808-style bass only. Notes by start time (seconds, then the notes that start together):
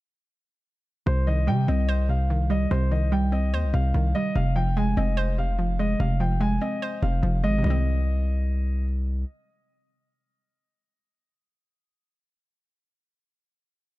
1.07 C2
1.48 C3
1.68 C2
2.71 C2
3.53 D#2
3.64 C2
3.74 C2
3.94 C2
4.36 F1
4.97 F1
6.00 F1
7.03 F1
7.23 F1
7.44 G#1
7.64 C2